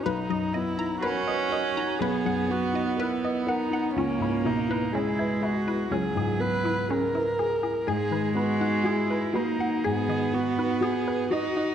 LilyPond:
<<
  \new Staff \with { instrumentName = "Synth pluck" } { \time 4/4 \key gis \minor \tempo 4 = 61 b'16 dis''16 dis''16 ais''16 b'16 dis''16 dis''16 ais''16 b'16 fis''16 r16 dis''16 b'16 dis''16 fis''16 fis''16 | cis'16 e'16 e'16 b'16 cis'16 e'16 e'16 b'16 cis'16 gis'16 r16 e'16 cis'16 e'16 gis'16 gis'16 | gis'16 b'16 b'16 fis''16 gis'16 b'16 b'16 fis''16 gis'16 dis''16 r16 b'16 gis'16 b'16 dis''16 dis''16 | }
  \new Staff \with { instrumentName = "Viola" } { \time 4/4 \key gis \minor dis'8 e'8 fis'4 gis'8 fis'8 e'8 dis'8 | cis'8 dis'8 e'8 fis'8 gis'8 b'8 ais'4 | gis'8 fis'8 e'8 dis'8 gis'8 fis'8 gis'8 fis'8 | }
  \new Staff \with { instrumentName = "Felt piano" } { \time 4/4 \key gis \minor b,,16 fis,16 b16 dis'16 ais'16 b'16 ais'16 dis'16 b,,16 fis,16 b16 dis'16 ais'16 b'16 ais'16 dis'16 | cis,16 gis,16 b,16 e'16 gis'16 b'16 gis'16 e'16 cis,16 gis,16 b16 e'16 gis'16 b'16 gis'16 e'16 | gis,16 dis16 b16 dis'16 fis'16 b'16 fis'16 dis'16 gis,16 dis16 b16 dis'16 fis'16 b'16 fis'16 dis'16 | }
  \new Staff \with { instrumentName = "Cello" } { \time 4/4 \key gis \minor r4 cis'4 b2 | ais4 gis4 fis4. r8 | gis4. ais8 b4. dis'8 | }
>>